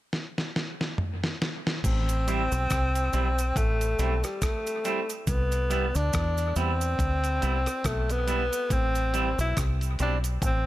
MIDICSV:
0, 0, Header, 1, 6, 480
1, 0, Start_track
1, 0, Key_signature, 0, "minor"
1, 0, Tempo, 858738
1, 1027, Time_signature, 4, 2, 24, 8
1, 5960, End_track
2, 0, Start_track
2, 0, Title_t, "Clean electric guitar"
2, 0, Program_c, 0, 27
2, 1271, Note_on_c, 0, 55, 79
2, 1275, Note_on_c, 0, 60, 73
2, 1277, Note_on_c, 0, 64, 88
2, 1349, Note_off_c, 0, 55, 0
2, 1351, Note_off_c, 0, 60, 0
2, 1352, Note_off_c, 0, 64, 0
2, 1749, Note_on_c, 0, 55, 73
2, 1753, Note_on_c, 0, 60, 77
2, 1756, Note_on_c, 0, 64, 74
2, 1828, Note_off_c, 0, 55, 0
2, 1830, Note_off_c, 0, 60, 0
2, 1832, Note_off_c, 0, 64, 0
2, 2230, Note_on_c, 0, 55, 77
2, 2232, Note_on_c, 0, 60, 83
2, 2234, Note_on_c, 0, 64, 86
2, 2309, Note_off_c, 0, 55, 0
2, 2310, Note_off_c, 0, 60, 0
2, 2311, Note_off_c, 0, 64, 0
2, 2710, Note_on_c, 0, 55, 73
2, 2712, Note_on_c, 0, 60, 81
2, 2715, Note_on_c, 0, 64, 83
2, 2789, Note_off_c, 0, 55, 0
2, 2790, Note_off_c, 0, 60, 0
2, 2791, Note_off_c, 0, 64, 0
2, 3186, Note_on_c, 0, 55, 80
2, 3188, Note_on_c, 0, 59, 76
2, 3191, Note_on_c, 0, 64, 84
2, 3266, Note_off_c, 0, 55, 0
2, 3268, Note_off_c, 0, 59, 0
2, 3269, Note_off_c, 0, 64, 0
2, 3668, Note_on_c, 0, 55, 78
2, 3669, Note_on_c, 0, 59, 88
2, 3672, Note_on_c, 0, 64, 90
2, 3748, Note_off_c, 0, 55, 0
2, 3748, Note_off_c, 0, 59, 0
2, 3750, Note_off_c, 0, 64, 0
2, 4142, Note_on_c, 0, 55, 73
2, 4146, Note_on_c, 0, 59, 73
2, 4149, Note_on_c, 0, 64, 83
2, 4225, Note_off_c, 0, 55, 0
2, 4227, Note_off_c, 0, 59, 0
2, 4228, Note_off_c, 0, 64, 0
2, 4624, Note_on_c, 0, 55, 80
2, 4627, Note_on_c, 0, 59, 76
2, 4629, Note_on_c, 0, 64, 76
2, 4706, Note_off_c, 0, 55, 0
2, 4707, Note_off_c, 0, 59, 0
2, 4708, Note_off_c, 0, 64, 0
2, 5106, Note_on_c, 0, 55, 77
2, 5108, Note_on_c, 0, 60, 76
2, 5112, Note_on_c, 0, 64, 84
2, 5187, Note_off_c, 0, 55, 0
2, 5188, Note_off_c, 0, 60, 0
2, 5190, Note_off_c, 0, 64, 0
2, 5589, Note_on_c, 0, 55, 72
2, 5591, Note_on_c, 0, 60, 81
2, 5594, Note_on_c, 0, 64, 85
2, 5668, Note_off_c, 0, 55, 0
2, 5669, Note_off_c, 0, 60, 0
2, 5671, Note_off_c, 0, 64, 0
2, 5960, End_track
3, 0, Start_track
3, 0, Title_t, "Tenor saxophone"
3, 0, Program_c, 1, 66
3, 1031, Note_on_c, 1, 60, 104
3, 1992, Note_on_c, 1, 57, 84
3, 2001, Note_off_c, 1, 60, 0
3, 2371, Note_on_c, 1, 55, 77
3, 2379, Note_off_c, 1, 57, 0
3, 2475, Note_on_c, 1, 57, 90
3, 2484, Note_off_c, 1, 55, 0
3, 2850, Note_off_c, 1, 57, 0
3, 2953, Note_on_c, 1, 59, 94
3, 3332, Note_on_c, 1, 62, 101
3, 3340, Note_off_c, 1, 59, 0
3, 3670, Note_off_c, 1, 62, 0
3, 3674, Note_on_c, 1, 60, 107
3, 4392, Note_on_c, 1, 57, 88
3, 4400, Note_off_c, 1, 60, 0
3, 4533, Note_on_c, 1, 59, 101
3, 4541, Note_off_c, 1, 57, 0
3, 4878, Note_on_c, 1, 60, 108
3, 4886, Note_off_c, 1, 59, 0
3, 5251, Note_off_c, 1, 60, 0
3, 5255, Note_on_c, 1, 64, 92
3, 5344, Note_off_c, 1, 64, 0
3, 5602, Note_on_c, 1, 62, 98
3, 5692, Note_off_c, 1, 62, 0
3, 5842, Note_on_c, 1, 60, 92
3, 5960, Note_off_c, 1, 60, 0
3, 5960, End_track
4, 0, Start_track
4, 0, Title_t, "Fingered electric bass"
4, 0, Program_c, 2, 33
4, 1031, Note_on_c, 2, 33, 99
4, 1385, Note_off_c, 2, 33, 0
4, 1409, Note_on_c, 2, 35, 89
4, 1502, Note_off_c, 2, 35, 0
4, 1515, Note_on_c, 2, 36, 89
4, 1736, Note_off_c, 2, 36, 0
4, 1752, Note_on_c, 2, 35, 80
4, 1974, Note_off_c, 2, 35, 0
4, 1990, Note_on_c, 2, 33, 84
4, 2213, Note_off_c, 2, 33, 0
4, 2230, Note_on_c, 2, 35, 78
4, 2358, Note_off_c, 2, 35, 0
4, 2949, Note_on_c, 2, 36, 98
4, 3305, Note_off_c, 2, 36, 0
4, 3327, Note_on_c, 2, 38, 78
4, 3421, Note_off_c, 2, 38, 0
4, 3433, Note_on_c, 2, 40, 93
4, 3655, Note_off_c, 2, 40, 0
4, 3668, Note_on_c, 2, 40, 80
4, 3892, Note_off_c, 2, 40, 0
4, 3907, Note_on_c, 2, 38, 86
4, 4131, Note_off_c, 2, 38, 0
4, 4152, Note_on_c, 2, 36, 79
4, 4279, Note_off_c, 2, 36, 0
4, 4388, Note_on_c, 2, 35, 89
4, 4744, Note_off_c, 2, 35, 0
4, 4867, Note_on_c, 2, 33, 98
4, 5223, Note_off_c, 2, 33, 0
4, 5247, Note_on_c, 2, 35, 84
4, 5341, Note_off_c, 2, 35, 0
4, 5351, Note_on_c, 2, 36, 99
4, 5573, Note_off_c, 2, 36, 0
4, 5590, Note_on_c, 2, 35, 86
4, 5813, Note_off_c, 2, 35, 0
4, 5824, Note_on_c, 2, 33, 90
4, 5960, Note_off_c, 2, 33, 0
4, 5960, End_track
5, 0, Start_track
5, 0, Title_t, "Muted clean electric guitar strokes"
5, 2132, Note_on_c, 9, 29, 43
5, 2188, Note_off_c, 9, 29, 0
5, 4286, Note_on_c, 9, 29, 36
5, 4342, Note_off_c, 9, 29, 0
5, 5960, End_track
6, 0, Start_track
6, 0, Title_t, "Drums"
6, 72, Note_on_c, 9, 38, 53
6, 128, Note_off_c, 9, 38, 0
6, 213, Note_on_c, 9, 38, 55
6, 268, Note_off_c, 9, 38, 0
6, 314, Note_on_c, 9, 38, 65
6, 369, Note_off_c, 9, 38, 0
6, 452, Note_on_c, 9, 38, 59
6, 508, Note_off_c, 9, 38, 0
6, 548, Note_on_c, 9, 45, 81
6, 604, Note_off_c, 9, 45, 0
6, 691, Note_on_c, 9, 38, 69
6, 747, Note_off_c, 9, 38, 0
6, 792, Note_on_c, 9, 38, 86
6, 848, Note_off_c, 9, 38, 0
6, 932, Note_on_c, 9, 38, 83
6, 988, Note_off_c, 9, 38, 0
6, 1029, Note_on_c, 9, 36, 100
6, 1031, Note_on_c, 9, 49, 82
6, 1031, Note_on_c, 9, 69, 65
6, 1085, Note_off_c, 9, 36, 0
6, 1086, Note_off_c, 9, 49, 0
6, 1087, Note_off_c, 9, 69, 0
6, 1167, Note_on_c, 9, 69, 52
6, 1168, Note_on_c, 9, 42, 49
6, 1223, Note_off_c, 9, 69, 0
6, 1224, Note_off_c, 9, 42, 0
6, 1273, Note_on_c, 9, 42, 65
6, 1273, Note_on_c, 9, 69, 50
6, 1329, Note_off_c, 9, 42, 0
6, 1329, Note_off_c, 9, 69, 0
6, 1408, Note_on_c, 9, 69, 70
6, 1413, Note_on_c, 9, 42, 55
6, 1464, Note_off_c, 9, 69, 0
6, 1469, Note_off_c, 9, 42, 0
6, 1509, Note_on_c, 9, 69, 65
6, 1512, Note_on_c, 9, 42, 93
6, 1513, Note_on_c, 9, 36, 108
6, 1518, Note_on_c, 9, 37, 102
6, 1565, Note_off_c, 9, 69, 0
6, 1568, Note_off_c, 9, 42, 0
6, 1569, Note_off_c, 9, 36, 0
6, 1574, Note_off_c, 9, 37, 0
6, 1651, Note_on_c, 9, 42, 52
6, 1652, Note_on_c, 9, 69, 46
6, 1707, Note_off_c, 9, 42, 0
6, 1708, Note_off_c, 9, 69, 0
6, 1749, Note_on_c, 9, 69, 49
6, 1752, Note_on_c, 9, 42, 61
6, 1805, Note_off_c, 9, 69, 0
6, 1808, Note_off_c, 9, 42, 0
6, 1892, Note_on_c, 9, 69, 74
6, 1893, Note_on_c, 9, 42, 54
6, 1948, Note_off_c, 9, 69, 0
6, 1949, Note_off_c, 9, 42, 0
6, 1989, Note_on_c, 9, 36, 90
6, 1992, Note_on_c, 9, 69, 60
6, 1993, Note_on_c, 9, 42, 74
6, 2045, Note_off_c, 9, 36, 0
6, 2048, Note_off_c, 9, 69, 0
6, 2049, Note_off_c, 9, 42, 0
6, 2130, Note_on_c, 9, 42, 55
6, 2131, Note_on_c, 9, 69, 52
6, 2186, Note_off_c, 9, 42, 0
6, 2186, Note_off_c, 9, 69, 0
6, 2230, Note_on_c, 9, 69, 54
6, 2233, Note_on_c, 9, 42, 67
6, 2286, Note_off_c, 9, 69, 0
6, 2289, Note_off_c, 9, 42, 0
6, 2368, Note_on_c, 9, 69, 56
6, 2369, Note_on_c, 9, 42, 51
6, 2374, Note_on_c, 9, 37, 58
6, 2424, Note_off_c, 9, 69, 0
6, 2425, Note_off_c, 9, 42, 0
6, 2430, Note_off_c, 9, 37, 0
6, 2469, Note_on_c, 9, 69, 71
6, 2470, Note_on_c, 9, 36, 104
6, 2470, Note_on_c, 9, 42, 89
6, 2477, Note_on_c, 9, 37, 108
6, 2525, Note_off_c, 9, 69, 0
6, 2526, Note_off_c, 9, 36, 0
6, 2526, Note_off_c, 9, 42, 0
6, 2533, Note_off_c, 9, 37, 0
6, 2608, Note_on_c, 9, 69, 50
6, 2611, Note_on_c, 9, 42, 50
6, 2664, Note_off_c, 9, 69, 0
6, 2667, Note_off_c, 9, 42, 0
6, 2709, Note_on_c, 9, 69, 42
6, 2711, Note_on_c, 9, 42, 71
6, 2765, Note_off_c, 9, 69, 0
6, 2767, Note_off_c, 9, 42, 0
6, 2848, Note_on_c, 9, 69, 72
6, 2850, Note_on_c, 9, 42, 47
6, 2904, Note_off_c, 9, 69, 0
6, 2906, Note_off_c, 9, 42, 0
6, 2946, Note_on_c, 9, 69, 67
6, 2948, Note_on_c, 9, 36, 105
6, 2950, Note_on_c, 9, 42, 83
6, 3002, Note_off_c, 9, 69, 0
6, 3003, Note_off_c, 9, 36, 0
6, 3006, Note_off_c, 9, 42, 0
6, 3084, Note_on_c, 9, 69, 49
6, 3086, Note_on_c, 9, 42, 48
6, 3140, Note_off_c, 9, 69, 0
6, 3142, Note_off_c, 9, 42, 0
6, 3189, Note_on_c, 9, 69, 52
6, 3190, Note_on_c, 9, 42, 61
6, 3245, Note_off_c, 9, 69, 0
6, 3246, Note_off_c, 9, 42, 0
6, 3325, Note_on_c, 9, 69, 67
6, 3332, Note_on_c, 9, 42, 53
6, 3381, Note_off_c, 9, 69, 0
6, 3388, Note_off_c, 9, 42, 0
6, 3427, Note_on_c, 9, 69, 69
6, 3429, Note_on_c, 9, 42, 92
6, 3431, Note_on_c, 9, 36, 102
6, 3436, Note_on_c, 9, 37, 105
6, 3482, Note_off_c, 9, 69, 0
6, 3485, Note_off_c, 9, 42, 0
6, 3487, Note_off_c, 9, 36, 0
6, 3492, Note_off_c, 9, 37, 0
6, 3564, Note_on_c, 9, 69, 49
6, 3568, Note_on_c, 9, 42, 50
6, 3620, Note_off_c, 9, 69, 0
6, 3624, Note_off_c, 9, 42, 0
6, 3666, Note_on_c, 9, 69, 47
6, 3669, Note_on_c, 9, 42, 66
6, 3722, Note_off_c, 9, 69, 0
6, 3725, Note_off_c, 9, 42, 0
6, 3807, Note_on_c, 9, 69, 72
6, 3809, Note_on_c, 9, 42, 51
6, 3863, Note_off_c, 9, 69, 0
6, 3864, Note_off_c, 9, 42, 0
6, 3907, Note_on_c, 9, 36, 99
6, 3910, Note_on_c, 9, 69, 59
6, 3911, Note_on_c, 9, 42, 78
6, 3962, Note_off_c, 9, 36, 0
6, 3965, Note_off_c, 9, 69, 0
6, 3967, Note_off_c, 9, 42, 0
6, 4045, Note_on_c, 9, 42, 52
6, 4049, Note_on_c, 9, 69, 52
6, 4101, Note_off_c, 9, 42, 0
6, 4104, Note_off_c, 9, 69, 0
6, 4148, Note_on_c, 9, 42, 67
6, 4150, Note_on_c, 9, 69, 52
6, 4204, Note_off_c, 9, 42, 0
6, 4206, Note_off_c, 9, 69, 0
6, 4283, Note_on_c, 9, 42, 50
6, 4287, Note_on_c, 9, 69, 59
6, 4288, Note_on_c, 9, 37, 57
6, 4339, Note_off_c, 9, 42, 0
6, 4343, Note_off_c, 9, 69, 0
6, 4344, Note_off_c, 9, 37, 0
6, 4384, Note_on_c, 9, 42, 78
6, 4387, Note_on_c, 9, 36, 102
6, 4387, Note_on_c, 9, 69, 73
6, 4392, Note_on_c, 9, 37, 109
6, 4440, Note_off_c, 9, 42, 0
6, 4443, Note_off_c, 9, 36, 0
6, 4443, Note_off_c, 9, 69, 0
6, 4447, Note_off_c, 9, 37, 0
6, 4525, Note_on_c, 9, 42, 55
6, 4527, Note_on_c, 9, 69, 46
6, 4581, Note_off_c, 9, 42, 0
6, 4583, Note_off_c, 9, 69, 0
6, 4626, Note_on_c, 9, 42, 69
6, 4626, Note_on_c, 9, 69, 44
6, 4682, Note_off_c, 9, 42, 0
6, 4682, Note_off_c, 9, 69, 0
6, 4767, Note_on_c, 9, 42, 46
6, 4767, Note_on_c, 9, 69, 75
6, 4823, Note_off_c, 9, 42, 0
6, 4823, Note_off_c, 9, 69, 0
6, 4865, Note_on_c, 9, 36, 99
6, 4866, Note_on_c, 9, 69, 65
6, 4867, Note_on_c, 9, 42, 83
6, 4921, Note_off_c, 9, 36, 0
6, 4922, Note_off_c, 9, 69, 0
6, 4923, Note_off_c, 9, 42, 0
6, 5004, Note_on_c, 9, 69, 51
6, 5005, Note_on_c, 9, 42, 48
6, 5060, Note_off_c, 9, 69, 0
6, 5061, Note_off_c, 9, 42, 0
6, 5107, Note_on_c, 9, 42, 65
6, 5109, Note_on_c, 9, 69, 50
6, 5163, Note_off_c, 9, 42, 0
6, 5165, Note_off_c, 9, 69, 0
6, 5248, Note_on_c, 9, 69, 67
6, 5250, Note_on_c, 9, 42, 54
6, 5303, Note_off_c, 9, 69, 0
6, 5306, Note_off_c, 9, 42, 0
6, 5348, Note_on_c, 9, 42, 89
6, 5349, Note_on_c, 9, 36, 107
6, 5350, Note_on_c, 9, 69, 69
6, 5354, Note_on_c, 9, 37, 106
6, 5404, Note_off_c, 9, 42, 0
6, 5405, Note_off_c, 9, 36, 0
6, 5406, Note_off_c, 9, 69, 0
6, 5410, Note_off_c, 9, 37, 0
6, 5485, Note_on_c, 9, 42, 50
6, 5492, Note_on_c, 9, 69, 47
6, 5541, Note_off_c, 9, 42, 0
6, 5548, Note_off_c, 9, 69, 0
6, 5583, Note_on_c, 9, 42, 66
6, 5586, Note_on_c, 9, 69, 48
6, 5639, Note_off_c, 9, 42, 0
6, 5642, Note_off_c, 9, 69, 0
6, 5723, Note_on_c, 9, 42, 57
6, 5725, Note_on_c, 9, 69, 78
6, 5779, Note_off_c, 9, 42, 0
6, 5781, Note_off_c, 9, 69, 0
6, 5823, Note_on_c, 9, 36, 97
6, 5825, Note_on_c, 9, 42, 78
6, 5826, Note_on_c, 9, 69, 63
6, 5879, Note_off_c, 9, 36, 0
6, 5881, Note_off_c, 9, 42, 0
6, 5882, Note_off_c, 9, 69, 0
6, 5960, End_track
0, 0, End_of_file